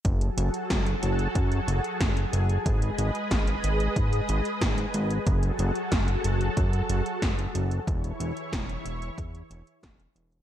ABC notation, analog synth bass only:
X:1
M:4/4
L:1/8
Q:1/4=92
K:F#dor
V:1 name="Analog synth bass" clef=bass
F,,, F,,, F,,, F,,, F,, F,,, F,,, F,,, | G,,, G,,, G,,, G,,, G,, G,,, G,,, G,,, | F,,, F,,, F,,, F,,, F,, F,,, F,,, F,,, | E,,, E,,, E,,, E,,, E,, E,,, E,,, E,,, |]